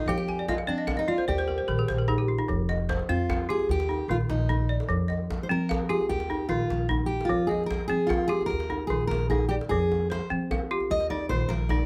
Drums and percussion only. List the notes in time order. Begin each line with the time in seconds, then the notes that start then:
0.08 djembe bass
0.28 djembe tone
0.48 djembe slap, djembe bass
0.59 djembe tone
0.88 djembe slap, djembe tone, djembe bass
0.99 djembe slap
1.18 djembe slap, djembe tone
1.28 djembe bass
1.39 djembe slap
1.48 djembe tone
1.58 djembe slap
1.68 djembe bass
1.78 djembe tone
1.88 djembe slap
2.09 djembe tone, djembe bass
2.29 djembe slap
2.40 djembe tone
2.49 djembe bass
2.69 djembe tone
2.89 djembe slap, djembe bass
2.99 djembe tone
3.30 djembe slap, djembe tone, djembe bass
3.49 djembe slap
3.59 djembe tone
3.69 djembe slap, djembe bass
3.80 djembe slap
3.91 djembe tone
4.11 djembe bass
4.20 djembe tone
4.30 djembe slap
4.40 djembe slap
4.50 djembe tone, djembe bass
4.71 djembe slap
4.80 djembe slap, djembe tone
4.90 djembe bass
5.10 djembe tone
5.30 djembe slap, djembe bass
5.71 djembe slap, djembe tone, djembe bass
5.91 djembe slap
6.01 djembe tone
6.11 djembe slap, djembe bass
6.20 djembe slap
6.31 djembe tone
6.51 djembe bass
6.60 djembe tone
6.70 djembe slap
6.81 djembe slap
6.91 djembe tone, djembe bass
7.11 djembe slap
7.21 djembe slap, djembe tone
7.30 djembe bass
7.51 djembe tone
7.71 djembe slap, djembe bass
7.81 djembe tone
8.10 djembe slap, djembe tone, djembe bass
8.31 djembe slap
8.41 djembe tone
8.51 djembe slap, djembe bass
8.60 djembe slap
8.70 djembe tone
8.90 djembe bass
9.01 djembe tone
9.11 djembe slap
9.21 djembe slap
9.31 djembe tone, djembe bass
9.51 djembe slap
9.61 djembe slap, djembe tone
9.71 djembe bass
9.92 djembe tone
10.01 djembe slap
10.11 djembe slap
10.32 djembe slap
10.41 djembe slap
10.51 djembe slap, djembe tone, djembe bass
10.80 djembe tone
10.91 djembe slap, djembe bass
11.00 djembe slap
11.10 djembe tone
11.30 djembe slap, djembe bass
11.41 djembe slap, djembe tone
11.50 djembe slap
11.70 djembe slap, djembe tone, djembe bass
11.80 djembe bass